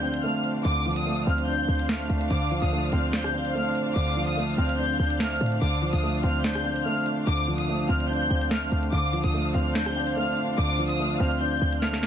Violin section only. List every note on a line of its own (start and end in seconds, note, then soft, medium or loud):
0.00 0.21 G6 medium
0.23 0.41 F6 medium
0.65 0.95 D6 loud
0.97 1.25 D#6 medium
1.27 1.45 F6 medium
1.48 1.87 G6 medium
1.89 2.07 F6 medium
2.30 2.60 D6 loud
2.62 2.91 D#6 medium
2.93 3.10 F6 medium
3.14 3.52 G6 medium
3.55 3.72 F6 medium
3.96 4.26 D6 loud
4.28 4.56 D#6 medium
4.58 4.75 F6 medium
4.79 5.18 G6 medium
5.20 5.38 F6 medium
5.62 5.91 D6 loud
5.93 6.22 D#6 medium
6.23 6.41 F6 medium
6.44 6.83 G6 medium
6.85 7.03 F6 medium
7.27 7.57 D6 loud
7.59 7.87 D#6 medium
7.89 8.07 F6 medium
8.10 8.49 G6 loud
8.51 8.69 F6 medium
8.92 9.22 D6 loud
9.25 9.53 D#6 medium
9.55 9.72 F6 medium
9.76 10.14 G6 medium
10.17 10.34 F6 medium
10.58 10.88 D6 loud
10.90 11.18 D#6 medium
11.20 11.37 F6 medium
11.41 11.80 G6 medium
11.82 12.00 F6 medium